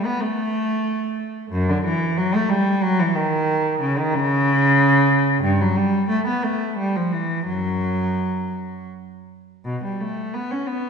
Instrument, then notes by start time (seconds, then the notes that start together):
cello
0.05 B3
0.21 A3
1.51 F#2
1.69 D3
1.84 E3
2.18 F#3
2.35 A3
2.49 G3
2.83 F#3
3.00 E3
3.14 D#3
3.81 C#3
3.99 D#3
4.14 C#3
5.43 G2
5.61 F#3
5.76 G3
6.09 A3
6.27 B3
6.43 A3
6.78 G3
6.96 F3
7.12 E3
7.47 F#2 F#3
9.65 B2
9.84 G3
10.00 A3
10.34 B3
10.51 C#4
10.67 B3